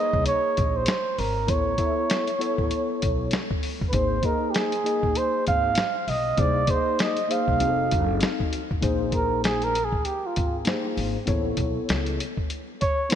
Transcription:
Already playing: A#3 D#4 G#4 D#5
0.02 C#5
0.13 C2, kick
0.26 C#5, closed hi-hat
0.57 A#1, kick, closed hi-hat
0.76 C5
0.86 snare, closed hi-hat
1.18 G#1 A#4, open hi-hat
1.47 A1 B3 E4 A4 C#5, kick, closed hi-hat
1.77 B3 E4 A4 E5, kick, closed hi-hat
2.10 snare, closed hi-hat
2.27 closed hi-hat
2.38 B3 E4 A4 C#5, closed hi-hat
2.58 A1, kick
2.71 closed hi-hat
3.02 B1, kick, closed hi-hat
3.31 snare, closed hi-hat
3.51 kick
3.63 open hi-hat
3.81 G1, kick
3.89 A#3 B4
3.93 G#1 D#4 G#4 C5, kick, closed hi-hat
4.22 A#3 D#4 G#4 A#4 D#5, kick, closed hi-hat
4.50 G4
4.54 G#4, snare, closed hi-hat
4.72 closed hi-hat
4.84 A#3 D#4 G#4 D#5, closed hi-hat
5.03 A#1, kick
5.15 C5, closed hi-hat
5.47 G#1 F5, kick, closed hi-hat
5.75 snare, closed hi-hat
6.08 B1 D#5, open hi-hat
6.36 C2 A#3 D#4 G#4 C5 D5, kick, closed hi-hat
6.67 A#3 D#4 G#4 C5 D5, kick, closed hi-hat
6.76 D#5
6.99 D#5, snare, closed hi-hat
7.17 closed hi-hat
7.28 A#3 D#4 G#4 C5 F5, closed hi-hat
7.48 C2, kick
7.59 F1 C4 D#4 F#4 G#4, closed hi-hat
7.68 A4
7.91 F#1, kick, closed hi-hat
8.21 snare, closed hi-hat
8.40 kick
8.53 closed hi-hat
8.71 A1, kick
8.81 A#1 A#3 D#4 G#4 C5, kick, closed hi-hat
9.12 A#4, kick, closed hi-hat
9.44 G#4, snare, closed hi-hat
9.62 A#4, closed hi-hat
9.75 closed hi-hat
9.85 G#4
9.93 kick
10.05 G4, closed hi-hat
10.26 F4
10.36 G#1, kick, closed hi-hat
10.65 A#3 D#4 G#4 C5, snare, closed hi-hat
10.97 G#1, open hi-hat
11.26 A1 B3 E4 A4 C#5, kick, closed hi-hat
11.57 B1, kick, closed hi-hat
11.89 C#2, snare, closed hi-hat
12.06 closed hi-hat
12.20 closed hi-hat
12.37 kick
12.50 closed hi-hat
12.81 C#5, kick, closed hi-hat
13.09 B3 E4 A4 B4 C#5, closed hi-hat

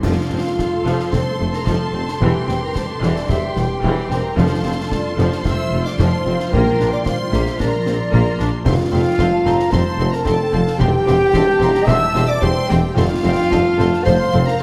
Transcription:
Already playing: C4 C5
0.02 F1 F2 F3 F4 A4 F5 C6, concert bass drum, snare, crash
0.21 A3
0.30 F1 F2 C4
0.39 C4
0.58 C5, concert bass drum, snare
0.76 A4
0.85 F1 F2 F3, snare
0.94 C5
1.00 snare
1.11 F1 F2 C3 C4 C5 A5 C6, concert bass drum, snare
1.30 A3
1.39 F1 F2 A3
1.48 C4
1.53 A#4 A#5, snare
1.66 F1 F2 F3 A4 C5 A5, concert bass drum, snare
1.85 A4
1.93 F1 F2 C4
2.03 C5
2.08 snare
2.20 E1 E2 E3 G4 G5, concert bass drum
2.40 G3
2.48 E1 E2 C4, snare
2.57 C4
2.62 A#4 A#5
2.75 A4 C5 A5, concert bass drum, snare
2.93 G4
3.01 E1 E2 E3 D5, snare
3.11 C5
3.16 snare
3.28 E1 E2 C4 G4 E5 G5, concert bass drum, snare
3.46 G3
3.56 E1 E2 G3 G5, snare
3.65 C4
3.82 E1 E2 E3 G4 C5 G5, concert bass drum
4.00 G4
4.10 E1 E2 C4 A#4 A#5, snare
4.18 C5
4.36 F1 F2 F3 F4 A4 F5 A5 C6, concert bass drum, snare
4.54 F3
4.63 F1 F2 C4
4.73 C4
4.91 C5 D5, concert bass drum, snare
5.10 F4
5.17 F1 F2 F3 C5, snare
5.26 C5
5.32 snare
5.44 F1 F2 C3 C4 E5 E6, concert bass drum, snare
5.62 F3
5.72 F1 F2 A3
5.80 C4
5.84 D5 D6, snare
5.97 F1 F2 F3 C5 A5 C6, concert bass drum, snare
6.17 F4
6.26 F1 F2 C4 F5
6.34 C5
6.40 snare
6.51 A#1 A#2 A#3 A#4 G5 A#5, concert bass drum
6.70 F3
6.79 A#1 A#2 D4, snare
6.87 D4 D5
6.92 D6
7.05 C5 F5 C6, concert bass drum, snare
7.24 F4
7.32 A#1 A#2 A#3 E5, snare
7.41 C5
7.47 snare
7.58 A#1 A#2 A#3 D4 A#4 D5 A#5, concert bass drum, snare
7.77 F3
7.86 A#1 A#2 C4, snare
7.95 D4
8.12 A#1 A#2 A#3 A#4 C5 A#5, concert bass drum
8.30 F4
8.39 A#1 A#2 D4, snare
8.47 C5
8.65 F1 F2 C4 F4 A4 F5 C6, concert bass drum, snare, crash
8.84 A3
8.91 F1 F2 C4 A4 G5 C6
9.01 C4
9.18 F1 F2 C4 A4 C5 A5 C6, concert bass drum, snare
9.37 A4
9.45 F1 F2 C4 A4 A#5 C6, snare
9.55 C5
9.59 snare
9.71 F1 F2 C3 C4 A4 C5 A5 C6, concert bass drum, snare
9.91 A3
9.99 F1 F2 C4 A4 C6
10.09 C4 A#4 A#5
10.13 snare
10.23 F1 F2 C4 A4 C5 G5 A5 C6, concert bass drum, snare
10.44 A4
10.52 F1 F2 C4 A4 F5 C6
10.62 C5
10.67 snare
10.78 E1 E2 C4 G4 G5 C6, concert bass drum
10.98 G3
11.06 E1 E2 C4 G4 C6, snare
11.16 C4
11.33 E1 E2 C4 G4 C5 A5 C6, concert bass drum, snare
11.51 G4
11.60 E1 E2 C4 G4 A#5 C6, snare
11.75 snare
11.85 E1 E2 C4 G4 E5 A5 E6, concert bass drum, snare
11.89 C6
12.06 G3
12.15 E1 E2 C4 G4 C6, snare
12.25 C4 D5 D6
12.41 E1 E2 C4 G4 C5 G5 C6, concert bass drum
12.60 G4
12.68 E1 E2 C4 G4 G5 C6, snare
12.78 C5
12.95 F1 F2 C4 F4 A4 F5 C6, concert bass drum, snare
13.14 A3
13.23 F1 F2 C4 A4 G5 C6
13.32 C4
13.50 F1 F2 C4 A4 C5 A5 C6, concert bass drum, snare
13.68 A4
13.78 F1 F2 C4 A4 A5 C6, snare
13.87 C5
13.93 snare
14.05 F1 F2 C3 C4 A4 C5 F5 C6, concert bass drum, snare
14.23 A3
14.32 F1 F2 C4 A4 C6
14.41 C4
14.45 A#4 A#5, snare
14.59 A5 C6

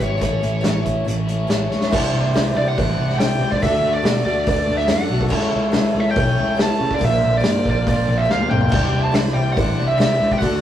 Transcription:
Already playing: C3 E3 G3 C4 E4 B4
0.00 G#1 G3 C4 C#5, kick, closed hi-hat
0.17 A2 E3 A3 C#4 E4 C#5
0.21 A1 E3 A3 C#4 E4, kick, closed hi-hat
0.39 A1 A3 C#4 E4 C#5, closed hi-hat
0.61 A2 E3 A3 C#4 E4 C#5, snare, closed hi-hat
0.65 A1
0.82 A3 C#4 E4 C#5, kick, closed hi-hat
1.04 A1 A3 C#4 E4 C#5, closed hi-hat
1.26 A2 E3 A3 C#4 E4, closed hi-hat
1.47 A1 A2 E3 A3 C#4 E4 C#5, snare, closed hi-hat
1.51 A3 C#4 E4
1.69 C#2 A3 C#4 E4 C#5, snare
1.81 snare
1.90 C2 C3 E3 G3 D4 E4 C5 D5, kick, crash
1.94 C5 D5
2.14 C2 E3
2.33 C2 C3 E3 G3 D4 E4 C5 D5, snare, open hi-hat
2.54 C2 G3 D4 E4 C5 D5
2.68 F#5
2.76 A1 G3 D4 E4 C5 E5, kick, open hi-hat
2.98 C2 G3
3.10 snare
3.19 C2 C3 E3 G3 D4 E4 C5 G5, snare, open hi-hat
3.23 E5
3.40 C#2 G3 D4 E4 C5
3.51 D5, kick
3.60 D2 D3 A3 D4 F#4 A4 D5 E5, kick, open hi-hat
3.65 D5
3.81 D2 A3
3.94 D5
4.02 B2 D3 A3 D4 F#4 A4, snare, open hi-hat
4.06 A4 D5
4.24 D2 A3 D4 F#4 A4 D5
4.44 D2 A3 D4 F#4 A4, kick, open hi-hat
4.49 A4 B4 D5
4.67 D2 A3
4.77 E5, snare
4.87 F#2 D3 A3 D4 F#4 A4 F#5, snare, open hi-hat
4.93 D5
5.08 B1 A3 D4 F#4 A4
5.21 kick
5.28 C#2 C#3 E3 A3 C#4 E4 A4 C#5, kick, crash
5.34 C#5
5.52 C#2 E3
5.72 C#2 C#3 E3 A3 C#4 E4 A4 C#5, snare, open hi-hat
5.92 C#2 A3 C#4 E4 A4
5.96 A3 A4 C#5
6.00 E5
6.11 A3 C#4 E4 A4 G5
6.15 B1 C#4 C#5, kick, open hi-hat
6.38 C#2 A3
6.55 C#3 E3 A3 C#4 E4 A4 C#5
6.59 C#2 E3 A5, snare, open hi-hat
6.77 C#3 A3 C#4 E4 A4
6.91 D5, kick
6.97 A#2 D3 A#3 C4 D4 F4 A#4 C5, open hi-hat
7.01 A#1 D4 A#4 C5 E5, kick
7.24 A#1 D3
7.37 A#2 D3 A#3 C4 D4 F4 D5
7.42 G2 D3 A#4 C5, snare, open hi-hat
7.59 A#3 C4 D4 F4 A#4 C5
7.65 A#1 A#3 C5, kick
7.70 D5
7.82 A#3 C4 D4 F4 A#4 C5
7.87 A#1 C4 D5, kick, open hi-hat
8.08 A#1 A#3
8.18 E5
8.24 A#2 D3 A#3 C4 D4 F4 A#4 C5
8.30 D2 D3 F5, snare
8.40 high tom
8.46 B1 A#3 C4 F4 C5
8.50 A#3 G5, mid tom
8.61 floor tom
8.69 C2 C3 E3 G3 D4 E4 C5 D5, kick, crash, splash
8.73 C3 D5
8.93 C2 E3
9.03 A5
9.12 C2 C3 E3 G3 D4 E4 C5 D5 B5, snare, open hi-hat
9.16 E3
9.32 C2 G3 D4 E4 C5 D5 G5
9.53 G3 D4 E4 C5 F#5
9.57 A1 C5 D5, kick, open hi-hat
9.78 C2 G3
9.88 E5
9.97 C2 C3 E3 G3 D4 E4 C5 D5 E5, snare, open hi-hat
10.17 C#2 G3 D4 E4 C5
10.31 G5, kick
10.39 D3 A3 D4 F#4 A4 D5 F#5, kick, open hi-hat
10.43 D2

